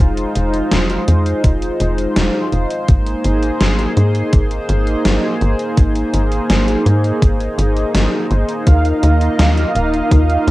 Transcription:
Already playing: analog synth pad G#3 D#4 F4 C5
0.00 analog synth bass F1, kick
0.17 closed hi-hat
0.35 analog synth bass F1, closed hi-hat
0.54 closed hi-hat
0.71 analog synth bass F1, snare, closed hi-hat
0.90 closed hi-hat
1.08 analog synth bass F2, closed hi-hat
1.26 closed hi-hat
1.44 analog synth bass F1, kick, closed hi-hat
1.62 closed hi-hat
1.80 analog synth bass F1, closed hi-hat
1.98 closed hi-hat
2.16 analog synth bass F1, snare, closed hi-hat
2.52 analog synth bass F1, closed hi-hat
2.70 closed hi-hat
2.88 analog synth bass G#1, analog synth pad A#3 D#4 G#4, kick, closed hi-hat
3.06 closed hi-hat
3.24 analog synth bass G#1, closed hi-hat
3.43 closed hi-hat
3.61 analog synth bass G#1, snare, closed hi-hat
3.79 closed hi-hat
3.97 analog synth bass G#2, closed hi-hat
4.15 closed hi-hat
4.33 analog synth bass G#1, kick, closed hi-hat
4.51 closed hi-hat
4.69 analog synth bass G#1, closed hi-hat
4.87 closed hi-hat
5.05 analog synth bass G#1, snare, closed hi-hat
5.41 analog synth bass G#1, closed hi-hat
5.59 closed hi-hat
5.77 analog synth bass G#1, kick, closed hi-hat
5.96 closed hi-hat
6.14 analog synth bass G#1, closed hi-hat
6.32 closed hi-hat
6.50 analog synth bass G#1, snare, closed hi-hat
6.68 closed hi-hat
6.86 analog synth bass G#2, closed hi-hat
7.04 closed hi-hat
7.22 analog synth bass G#1, kick, closed hi-hat
7.40 closed hi-hat
7.58 analog synth bass G#1, closed hi-hat
7.77 closed hi-hat
7.94 analog synth bass G#1, snare, closed hi-hat
8.31 analog synth bass G#1, closed hi-hat
8.49 closed hi-hat
8.67 analog synth bass D#2, analog synth pad A#3 F4 D#5, analog polysynth D#4 A#4 F5, kick, closed hi-hat
8.85 closed hi-hat
9.03 analog synth bass D#2, closed hi-hat
9.21 closed hi-hat
9.39 analog synth bass D#2, snare, closed hi-hat
9.57 closed hi-hat
9.75 analog synth bass D#1, analog polysynth D#4 A#4 F5, closed hi-hat
9.94 closed hi-hat
10.11 analog synth bass D#2, kick, closed hi-hat
10.30 closed hi-hat
10.47 analog synth bass D#2, closed hi-hat

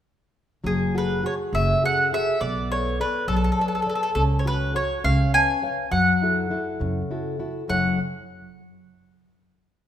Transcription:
0.64 upright bass F#1, nylon-string guitar F#3, mandolin G#4
0.95 nylon-string guitar F#4 G#4 A4, mandolin B4
1.24 nylon-string guitar F#4 G#4 A4, mandolin C#5
1.53 upright bass F#1, nylon-string guitar C#3, mandolin E5
1.83 nylon-string guitar F#4 G#4 A4, mandolin F#5
2.12 nylon-string guitar F#4 G#4 A4, mandolin E5
2.41 upright bass B1, nylon-string guitar B3, mandolin D5
2.71 nylon-string guitar A4 B4 D5, mandolin C#5
3.00 nylon-string guitar A4 B4 D5, mandolin B4
3.28 upright bass B1, nylon-string guitar F#3, mandolin A4
3.36 mandolin A4
3.44 mandolin A4
3.52 mandolin A4
3.59 nylon-string guitar A4 B4 D5, mandolin A4
3.68 mandolin A4
3.75 mandolin A4
3.82 mandolin A4
3.86 nylon-string guitar A4 B4 D5, mandolin A4
3.95 mandolin A4
4.03 mandolin A4
4.15 upright bass C#2, nylon-string guitar C#4, mandolin A4
4.39 mandolin C#5
4.45 nylon-string guitar F#4 A4 C#5, mandolin B4
4.74 nylon-string guitar F#4 A4 C#5, mandolin C#5
5.04 upright bass C#2, nylon-string guitar C#4, mandolin F5
5.34 nylon-string guitar B4 C#5 F5, mandolin G#5
5.62 nylon-string guitar B4 C#5 F5
5.91 upright bass F#2, nylon-string guitar F#3, mandolin F#5
6.22 nylon-string guitar E4 F#4 A4
6.51 nylon-string guitar E4 F#4 A4
6.80 upright bass F#2, nylon-string guitar C#3
7.11 nylon-string guitar E4 F#4 A4
7.39 nylon-string guitar E4 F#4 A4
7.68 upright bass F#1, nylon-string guitar F#2 C#3 F#3 E4 A4 C#5, mandolin F#5

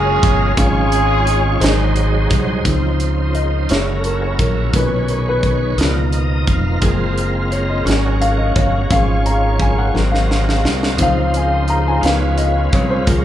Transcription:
Already playing: fingered electric bass F#1, upright piano F#3 C#4 A#4 F5, tonewheel organ F#3 C#4 A#4 F5, horn section G#3 C#4 F4 G#4
0.23 fingered electric bass G1, kick, closed hi-hat
0.57 fingered electric bass G#1, upright piano G#2 C#4 F4 G#4 F5, tonewheel organ G#3 C#4 F4 C#5, horn section G#3 C#4 F4 G#4, kick, closed hi-hat
0.92 closed hi-hat
1.27 closed hi-hat
1.60 fingered electric bass G#1, upright piano G#2 F#3 G#4 C5 D#5, tonewheel organ F#3 G#3 D#4 C5, closed hi-hat
1.64 snare
1.96 closed hi-hat
2.31 fingered electric bass C2, kick, closed hi-hat
2.65 fingered electric bass C#2, tonewheel organ C#3 E3 D#4 C5, upright piano F3 C4 D#4, kick, closed hi-hat
2.73 tonewheel organ F3
3.00 closed hi-hat
3.35 upright piano D#5, closed hi-hat
3.69 fingered electric bass F#1, tonewheel organ F#3 C#4 E4 A#4, upright piano G#3 A#3 E4 C#5, snare, closed hi-hat
4.00 upright piano A4
4.04 upright piano A#4, closed hi-hat
4.22 upright piano C#5
4.39 fingered electric bass A#1, upright piano A#4, kick, closed hi-hat
4.73 fingered electric bass B1, upright piano A#2 C#4 D#4 B4, tonewheel organ C#3 C#4 B4 C#5, kick, closed hi-hat
4.80 tonewheel organ D#3
5.08 upright piano A#4, closed hi-hat
5.29 upright piano B4
5.43 kick, closed hi-hat
5.78 fingered electric bass C#2, tonewheel organ B2 F3 D#4 A#4, upright piano F3 A#3 B3 D#4, snare, closed hi-hat
6.13 tonewheel organ D#5, closed hi-hat
6.47 fingered electric bass F1, tonewheel organ F5, kick, closed hi-hat
6.81 fingered electric bass F#1, upright piano F3 G#3 A#3 C4, tonewheel organ G#3 C4 F4 G#4, kick, closed hi-hat
6.89 tonewheel organ A#4
7.18 closed hi-hat
7.52 upright piano C#5, closed hi-hat
7.70 upright piano D#5
7.85 fingered electric bass G#1, upright piano F#3 A#3 C#4, tonewheel organ G#3 C#4 F#4 A#4, closed hi-hat
7.90 snare
8.21 upright piano F5, closed hi-hat
8.38 upright piano D#5
8.55 fingered electric bass G1, upright piano C#5, kick, closed hi-hat
8.90 fingered electric bass G#1, upright piano F3 G#3 C#4 F5, tonewheel organ G#3 C#4 F4 C#5, kick, closed hi-hat
9.26 upright piano A#5, closed hi-hat
9.60 upright piano G#5, kick, closed hi-hat
9.78 upright piano F#5
9.94 fingered electric bass G#1, upright piano F#3 A#3 C4, tonewheel organ G#3 C4 F#4 A#4, snare
10.12 upright piano F5, snare
10.31 snare
10.49 snare
10.64 fingered electric bass C2, snare
10.83 snare
10.97 fingered electric bass C#2, tonewheel organ C#3 F3 D#4 C5, upright piano F3 C4 D#4, kick, closed hi-hat
11.02 upright piano F5
11.34 upright piano G#5, closed hi-hat
11.68 upright piano A#5, closed hi-hat
11.88 upright piano G#5
12.01 fingered electric bass C#2, upright piano F3 B3 D#4, tonewheel organ G#3 C#4 F4 B4, closed hi-hat
12.05 upright piano F5, snare
12.38 upright piano D#5, closed hi-hat
12.73 fingered electric bass C2, upright piano C#5, kick, closed hi-hat
12.90 upright piano C5
13.06 fingered electric bass C#2, tonewheel organ F#3 C#4 F4 A#4, upright piano G#3 A#3 F4, kick, closed hi-hat

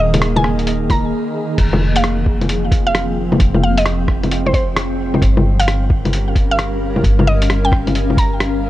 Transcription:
Already playing: 808-style bass D#1, ambient pad D#3 A#3 G#4 D#5, synth texture A#4
0.00 synth pluck D#5
0.14 closed hi-hat, low bongo
0.22 cross-stick, closed hi-hat
0.36 synth pluck G#5, low bongo
0.44 cross-stick
0.59 closed hi-hat
0.67 closed hi-hat
0.90 synth pluck A#5, kick, closed hi-hat, low bongo
1.58 808-style bass F1, ambient pad F3, kick, closed hi-hat, crash
1.73 low bongo
1.90 ambient pad C4
1.96 synth pluck F5, closed hi-hat
2.04 cross-stick, closed hi-hat
2.26 kick
2.41 ambient pad G5, closed hi-hat, low bongo
2.49 closed hi-hat
2.72 kick, closed hi-hat
2.87 synth pluck F5
2.95 cross-stick, closed hi-hat
3.32 low bongo
3.40 808-style bass F1, kick, closed hi-hat
3.54 low bongo
3.63 synth pluck F5
3.78 synth pluck D#5, closed hi-hat
3.86 cross-stick, closed hi-hat
4.08 kick, cross-stick
4.23 closed hi-hat, low bongo
4.31 closed hi-hat
4.46 synth pluck C5, low bongo
4.54 synth pluck C5, kick, closed hi-hat
4.77 cross-stick, closed hi-hat
5.14 low bongo
5.22 808-style bass G1, ambient pad G3, kick, closed hi-hat
5.35 ambient pad C#4, low bongo
5.39 ambient pad A#4
5.60 synth pluck F5, closed hi-hat
5.68 cross-stick, closed hi-hat
5.90 kick
6.05 ambient pad F5, closed hi-hat, low bongo
6.13 closed hi-hat
6.36 kick, closed hi-hat
6.51 synth pluck F5
6.59 cross-stick, closed hi-hat
6.96 low bongo
7.04 808-style bass G1, kick, closed hi-hat
7.19 low bongo
7.27 synth pluck D#5
7.42 closed hi-hat
7.50 cross-stick, closed hi-hat
7.65 synth pluck G5
7.72 kick, cross-stick
7.87 closed hi-hat, low bongo
7.95 closed hi-hat
8.10 low bongo
8.17 synth pluck A#5, kick, closed hi-hat
8.40 cross-stick, closed hi-hat

